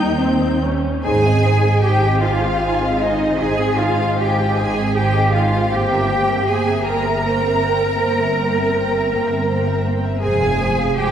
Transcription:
Already playing: double bass section D#2, cello section G3, viola section D#4, violin section G5 G6
0.21 viola section C4
0.63 viola section C#4
1.04 double bass section G#1, viola section D#4 C5, cello section G#4, violin section G#5
1.24 viola section C4 G#4, violin section D#5
1.44 viola section D#4 C5, violin section G#5
1.63 viola section C4 G#4, violin section D#5
1.82 viola section D#4 C5, cello section G4, violin section G5 G#5
2.03 viola section C4 G#4, violin section D#5
2.22 double bass section G#1, viola section D#4 C5, cello section F4, violin section F5 G#5
2.42 viola section C4 G#4, violin section D#5
2.62 viola section D#4 C5, violin section G#5
2.82 viola section C4 G#4, violin section D#5
3.01 cello section D#4, viola section D#4 C5, violin section D#5 G#5
3.21 viola section C4 G#4, violin section D#5
3.40 double bass section G#1, viola section D#4 C5, cello section G#4, violin section G#5
3.61 viola section C4 G#4, violin section D#5
3.80 viola section D#4 C5, cello section F4, violin section F5 G#5
4.00 viola section C4 G#4, violin section D#5
4.20 viola section D#4 C5, cello section G4, violin section G5 G#5
4.39 viola section C4 G#4, violin section D#5
4.58 double bass section G#1, viola section D#4 C5, cello section G#4, violin section G#5
4.76 viola section C4 G#4, violin section D#5
4.96 viola section D#4 C5, cello section G4, violin section G5 G#5
5.16 viola section C4 G#4, violin section D#5
5.34 viola section D#4 C5, cello section F4, violin section F5 G#5
5.53 viola section C4 G#4, violin section D#5
5.72 double bass section G1, viola section A#3 C5, cello section G4, violin section G5
5.92 viola section C4 A#4, violin section E5
6.10 viola section A#3 C5, violin section G5
6.29 viola section C4 A#4, violin section E5
6.48 viola section A#3 C5, cello section G#4, violin section G5 G#5
6.67 viola section C4 A#4, violin section E5
6.86 double bass section G1, viola section A#3 C5, cello section A#4, violin section G5 A#5
7.06 viola section C4 A#4, violin section E5
7.26 viola section A#3 C5, violin section G5
7.44 viola section C4 A#4, violin section E5
7.64 viola section A#3 C5, violin section G5
7.82 viola section C4 A#4, violin section E5
8.01 double bass section G1, viola section A#3 C5, violin section G5
8.20 viola section C4 A#4, violin section E5
8.38 viola section A#3 C5, violin section G5
8.58 viola section C4 A#4, violin section E5
8.76 viola section A#3 C5, violin section G5
8.94 viola section C4 A#4, violin section E5
9.12 double bass section G1, viola section A#3 C5, violin section G5
9.30 viola section C4 A#4, violin section E5
9.48 viola section A#3 C5, violin section G5
9.67 viola section C4 A#4, violin section E5
9.84 viola section A#3 C5, violin section G5
10.03 viola section C4 A#4, violin section E5
10.21 double bass section F1, viola section G#3 C5, cello section G#4, violin section G#5
10.41 viola section C4 G#4, violin section F5
10.60 viola section G#3 C5, violin section G#5
10.79 viola section C4 G#4, violin section F5
10.97 viola section G#3 C5, cello section G4, violin section G5 G#5

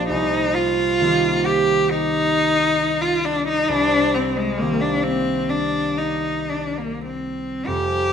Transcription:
Already playing: harp A#1 F3 A#3 C4 G4
0.09 harp C2, cello D#4
0.54 cello F4
0.99 harp D#3 A#3 C4
1.05 harp G4
1.45 cello G4
1.90 cello D#4
3.02 cello F4
3.25 cello D4
3.49 cello D#4
3.69 harp C2, cello D4
4.15 cello C4
4.37 cello G#3
4.58 harp D#3 A#3 C4, cello A#3
4.62 harp G4
4.81 cello D4
5.03 cello C4
5.49 cello D4
5.98 cello D#4
6.49 cello D4
6.78 cello A#3
7.05 cello C4
7.67 harp F1 F2, cello G4

